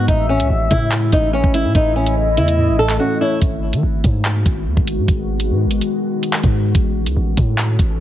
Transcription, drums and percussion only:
0.08 kick, closed hi-hat
0.40 closed hi-hat
0.71 kick, closed hi-hat
0.92 clap, closed hi-hat
1.12 kick, closed hi-hat
1.44 kick
1.54 closed hi-hat
1.75 kick, closed hi-hat
2.06 closed hi-hat
2.37 closed hi-hat
2.48 closed hi-hat
2.89 clap, closed hi-hat
3.42 kick, closed hi-hat
3.73 closed hi-hat
4.04 kick, closed hi-hat
4.25 clap, closed hi-hat
4.46 kick, closed hi-hat
4.77 kick
4.87 closed hi-hat
5.08 kick, closed hi-hat
5.40 closed hi-hat
5.71 closed hi-hat
5.81 closed hi-hat
6.23 closed hi-hat
6.33 clap
6.43 kick, closed hi-hat
6.75 kick, closed hi-hat
7.06 closed hi-hat
7.37 kick, closed hi-hat
7.58 clap, closed hi-hat
7.79 kick, closed hi-hat

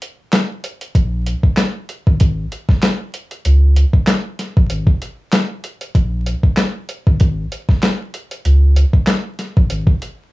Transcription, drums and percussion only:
0.02 closed hi-hat
0.32 snare, clap, closed hi-hat
0.64 closed hi-hat
0.81 closed hi-hat
0.95 kick, closed hi-hat
1.26 closed hi-hat
1.43 kick
1.57 snare, clap, closed hi-hat
1.89 closed hi-hat
2.07 kick
2.20 kick, closed hi-hat
2.52 closed hi-hat
2.69 kick, snare
2.82 snare, clap, closed hi-hat
3.14 closed hi-hat
3.31 closed hi-hat
3.45 closed hi-hat
3.76 closed hi-hat
3.93 kick
4.07 snare, clap, closed hi-hat
4.39 snare, closed hi-hat
4.57 kick
4.70 closed hi-hat
4.87 kick
5.02 closed hi-hat
5.32 snare, clap, closed hi-hat
5.64 closed hi-hat
5.81 closed hi-hat
5.95 kick, closed hi-hat
6.26 closed hi-hat
6.43 kick
6.57 snare, clap, closed hi-hat
6.89 closed hi-hat
7.07 kick
7.20 kick, closed hi-hat
7.52 closed hi-hat
7.69 kick, snare
7.82 snare, clap, closed hi-hat
8.14 closed hi-hat
8.31 closed hi-hat
8.45 closed hi-hat
8.76 closed hi-hat
8.93 kick
9.07 snare, clap, closed hi-hat
9.39 snare, closed hi-hat
9.57 kick
9.70 closed hi-hat
9.87 kick
10.02 closed hi-hat

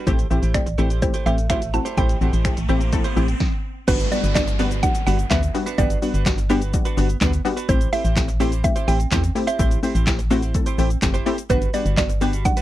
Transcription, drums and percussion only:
0.07 kick, closed hi-hat, shaker
0.19 closed hi-hat, shaker
0.31 shaker
0.43 closed hi-hat, shaker
0.54 finger snap, kick, closed hi-hat, shaker
0.67 closed hi-hat, shaker
0.78 shaker
0.90 closed hi-hat, shaker
1.02 kick, closed hi-hat, shaker
1.14 closed hi-hat, shaker
1.26 shaker
1.38 closed hi-hat, shaker
1.50 finger snap, kick, closed hi-hat, shaker
1.62 closed hi-hat, shaker
1.74 shaker
1.86 closed hi-hat, shaker
1.97 kick, closed hi-hat, shaker
2.09 closed hi-hat, shaker
2.21 shaker
2.33 closed hi-hat, shaker
2.45 finger snap, kick, closed hi-hat, shaker
2.57 closed hi-hat, shaker
2.69 shaker
2.81 closed hi-hat, shaker
2.92 kick, closed hi-hat, shaker
3.04 closed hi-hat, shaker
3.17 shaker
3.28 closed hi-hat, shaker
3.40 kick, snare
3.88 kick, closed hi-hat, crash, shaker
4.00 closed hi-hat, shaker
4.12 open hi-hat, shaker
4.24 closed hi-hat, shaker
4.35 kick, snare, clap, closed hi-hat, shaker
4.47 closed hi-hat, shaker
4.59 open hi-hat, shaker
4.71 closed hi-hat, shaker
4.83 kick, closed hi-hat, shaker
4.95 closed hi-hat, shaker
5.07 open hi-hat, shaker
5.19 closed hi-hat, shaker
5.31 kick, snare, clap, closed hi-hat, shaker
5.43 closed hi-hat, shaker
5.55 open hi-hat, shaker
5.67 closed hi-hat, shaker
5.78 kick, closed hi-hat, shaker
5.90 closed hi-hat, shaker
6.02 open hi-hat, shaker
6.14 closed hi-hat, shaker
6.26 kick, snare, clap, closed hi-hat, shaker
6.38 closed hi-hat, shaker
6.50 open hi-hat, shaker
6.62 closed hi-hat, shaker
6.74 kick, closed hi-hat, shaker
6.85 closed hi-hat, shaker
6.97 open hi-hat, shaker
7.09 closed hi-hat, shaker
7.21 kick, snare, clap, closed hi-hat, shaker
7.33 closed hi-hat, shaker
7.45 open hi-hat, shaker
7.57 closed hi-hat, shaker
7.69 kick, closed hi-hat, shaker
7.81 closed hi-hat, shaker
7.93 open hi-hat, shaker
8.05 closed hi-hat, shaker
8.16 kick, snare, clap, closed hi-hat, shaker
8.28 closed hi-hat, shaker
8.40 open hi-hat, shaker
8.52 closed hi-hat, shaker
8.64 kick, closed hi-hat, shaker
8.76 closed hi-hat, shaker
8.88 open hi-hat, shaker
9.00 closed hi-hat, shaker
9.11 kick, snare, clap, closed hi-hat, shaker
9.24 closed hi-hat, shaker
9.36 open hi-hat, shaker
9.48 closed hi-hat, shaker
9.59 kick, closed hi-hat, shaker
9.71 closed hi-hat, shaker
9.83 open hi-hat, shaker
9.95 closed hi-hat, shaker
10.07 kick, snare, clap, closed hi-hat, shaker
10.19 closed hi-hat, shaker
10.31 open hi-hat, shaker
10.43 closed hi-hat, shaker
10.54 kick, closed hi-hat, shaker
10.66 closed hi-hat, shaker
10.78 open hi-hat, shaker
10.90 closed hi-hat, shaker
11.02 kick, snare, clap, closed hi-hat, shaker
11.14 closed hi-hat, shaker
11.26 open hi-hat, shaker
11.38 closed hi-hat, shaker
11.50 kick, closed hi-hat, shaker
11.62 closed hi-hat, shaker
11.74 open hi-hat, shaker
11.86 closed hi-hat, shaker
11.97 kick, snare, clap, closed hi-hat, shaker
12.09 closed hi-hat, shaker
12.21 open hi-hat, shaker
12.33 closed hi-hat, shaker
12.45 kick, closed hi-hat, shaker
12.57 closed hi-hat, shaker

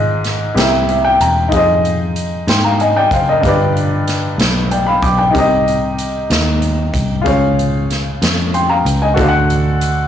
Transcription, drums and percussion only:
0.24 snare, closed hi-hat
0.57 snare, closed hi-hat
0.89 closed hi-hat
1.21 closed hi-hat
1.52 kick, closed hi-hat
1.85 closed hi-hat
2.16 closed hi-hat
2.48 snare, closed hi-hat
2.80 closed hi-hat
3.11 kick, closed hi-hat
3.43 kick, closed hi-hat
3.77 closed hi-hat
4.08 snare, closed hi-hat
4.40 snare, closed hi-hat
4.71 closed hi-hat
5.03 kick, closed hi-hat
5.35 kick, closed hi-hat
5.68 closed hi-hat
5.98 closed hi-hat
6.31 snare, closed hi-hat
6.62 closed hi-hat
6.94 kick, closed hi-hat
7.26 kick, closed hi-hat
7.59 closed hi-hat
7.90 snare, closed hi-hat
8.22 snare, closed hi-hat
8.54 closed hi-hat
8.86 closed hi-hat
9.17 kick, closed hi-hat
9.50 closed hi-hat
9.81 closed hi-hat

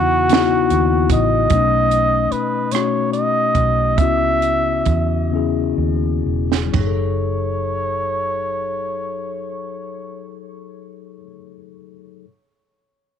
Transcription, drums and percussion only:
0.29 snare, closed hi-hat
0.70 closed hi-hat
1.10 kick, closed hi-hat
1.50 kick, closed hi-hat
1.91 closed hi-hat
2.32 closed hi-hat
2.72 cross-stick, closed hi-hat
3.13 closed hi-hat
3.55 kick, closed hi-hat
3.98 kick, closed hi-hat
4.42 closed hi-hat
4.86 kick, closed hi-hat
6.52 snare
6.74 kick, floor tom, splash

